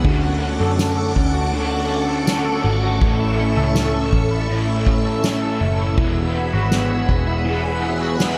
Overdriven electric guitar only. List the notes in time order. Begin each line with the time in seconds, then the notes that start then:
0.04 D3 A3 C#4 F#4
0.41 C#4 F#4
0.47 A3
1.52 D3 A3 C#4
1.57 F#4
2.26 D3 A3
2.30 C#4 F#4
3.00 A2 E3 A3 C#4 E4
3.37 C#4 E4
3.43 A3
4.48 E3 A3
4.52 C#4 E4
5.22 E3 A3
5.26 C#4 E4
5.95 E3 G#3
6.01 B3 F#4
7.44 E3 G#3 B3
7.50 F#4
8.18 E3 G#3
8.22 B3 F#4